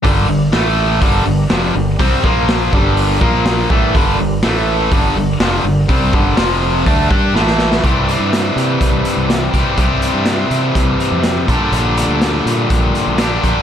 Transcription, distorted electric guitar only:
X:1
M:4/4
L:1/8
Q:1/4=123
K:Gdor
V:1 name="Distorted electric guitar" clef=bass
[G,,D,G,] [G,,D,] [A,,E,A,]2 [G,,D,G,] [G,,D,] [F,,C,F,] [G,,D,] | [C,G,C] [B,,F,B,]2 [G,,D,G,]2 [B,,F,B,]2 [A,,E,A,] | [G,,D,G,] [G,,D,] [A,,E,A,]2 [G,,D,G,] [G,,D,] [F,,C,F,] [G,,D,] | [C,G,C] [G,,D,G,] [F,,C,F,]2 [D,A,D] [G,DG] [A,,E,A,]2 |
[C,E,G,CG]6- [C,E,G,CG] [C,E,G,CG] | [C,E,G,CG]6- [C,E,G,CG] [B,,D,G,DG]- | [B,,D,G,DG]6 [B,,D,G,DG] [B,,D,G,DG] |]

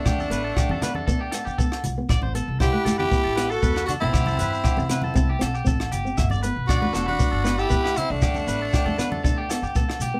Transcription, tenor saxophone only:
X:1
M:4/4
L:1/16
Q:1/4=118
K:Dmix
V:1 name="Tenor saxophone"
D8- D3 z4 z | z4 G3 G4 A3 F E- | E8- E3 z4 z | z4 F3 F4 G3 E D- |
D8- D3 z4 z |]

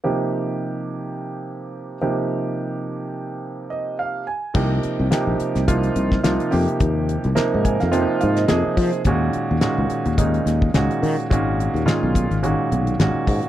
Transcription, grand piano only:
X:1
M:4/4
L:1/16
Q:"Swing 16ths" 1/4=107
K:Cm
V:1 name="Grand piano"
z16 | z8 z2 e2 f2 a2 | z16 | z6 a f g2 f e e2 c2 |
z16 | z16 |]
V:2 name="Grand piano"
[C,F,B,EG]12- [C,F,B,EG]2 [C,F,B,EG]2- | [C,F,B,EG]12- [C,F,B,EG]2 z2 | [C,F,B,EG]4 [C,F,B,EG]4 [C,F,B,EF]4 [C,F,B,EF]2 [C,F,B,EG]2- | [C,F,B,EG]4 [C,F,B,EB]4 [C,F,B,EF]4 [C,F,B,EA]4 |
[B,,E,A,_D_G]4 [B,,E,A,DG]4 [B,,E,A,DE]4 [B,,E,A,DG]4 | [B,,E,A,_D_G]4 [B,,E,A,DF]4 [B,,E,A,DG]4 [B,,E,A,DG]4 |]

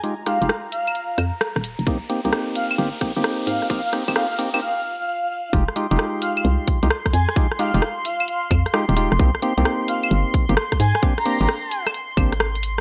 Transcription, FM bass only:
X:1
M:4/4
L:1/16
Q:"Swing 16ths" 1/4=131
K:Fm
V:1 name="FM bass" clef=bass
z3 F,,, z6 F,, z2 E,,,2 F,,, | C,, z2 C,, z4 G,,, z2 G,,, z2 A,, z | z3 A,,, z12 | F,,, z2 F,,, z4 C,, z2 C,, z2 F,, z |
z3 F,,, z6 F,, z2 E,,,2 F,,, | C,, z2 C,, z4 G,,, z2 G,,, z2 A,, z | z3 A,,, z6 A,,,6 |]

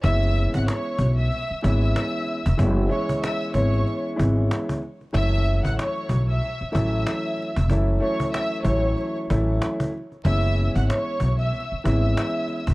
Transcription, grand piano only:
X:1
M:4/4
L:1/8
Q:"Swing 16ths" 1/4=94
K:F#m
V:1 name="Grand piano"
[E,G,B,CE]4 z [E,G,B,CE]2 z | [E,G,B,CE] [E,G,B,CE]2 [E,G,B,CE]2 [E,G,B,CE]2 z | [E,F,A,CE]4 z [E,F,A,CE]2 z | [E,F,A,CE] [E,F,A,CE]2 [E,F,A,CE]2 [E,F,A,CE]2 z |
[E,G,B,CE]4 z [E,G,B,CE]2 z |]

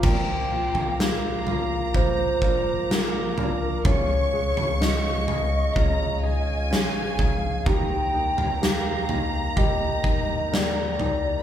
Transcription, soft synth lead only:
X:1
M:4/4
L:1/8
Q:1/4=63
K:Bbmix
V:1 name="Soft synth lead"
g2 f2 c2 B2 | _d2 e4 f2 | g2 f2 e2 d2 |]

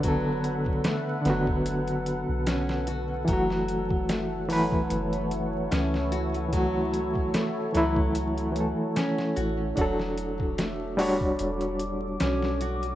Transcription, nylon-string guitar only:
X:1
M:4/4
L:1/8
Q:"Swing 16ths" 1/4=74
K:F#m
V:1 name="Nylon-string guitar"
F,2 A, F,3 C F | F,2 A, F,3 C F | F,2 A, F,3 C F | F,2 A, =G,3 C F |]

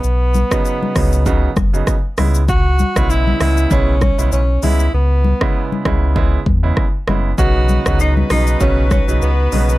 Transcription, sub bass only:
X:1
M:4/4
L:1/16
Q:"Swing 16ths" 1/4=98
K:C#m
V:1 name="Sub bass" clef=bass
B,,,3 z3 C,,4 F,,,2 z2 C,,2- | C,,3 B,,,3 C,,2 B,,,3 B,,, B,,,2 C,,2 | C,,3 z3 C,,4 E,,2 z2 F,,,2 | B,,,3 C,,3 B,,,2 B,,,3 B,,, C,,2 B,,,2 |]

